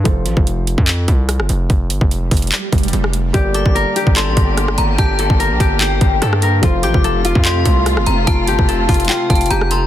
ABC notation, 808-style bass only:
X:1
M:4/4
L:1/16
Q:1/4=146
K:Gm
V:1 name="808-style bass" clef=bass
F,,,2 A,,, F,,,4 F,,3 C,,3 G,,, F,,,2 | F,,,2 G,,, F,,,3 F,,,2 z2 F,,,2 F,,,4 | G,,,3 G,,,2 z2 G,,,2 A,,, G,,,4 G,,,2 | G,,,3 G,,,2 B,,, G,,,4 G,,,2 G,,4 |
F,,,2 A,,, F,,,4 F,,3 C,,3 G,,, F,,,2 | F,,,2 G,,, F,,,3 F,,,2 z2 F,,,2 F,,,4 |]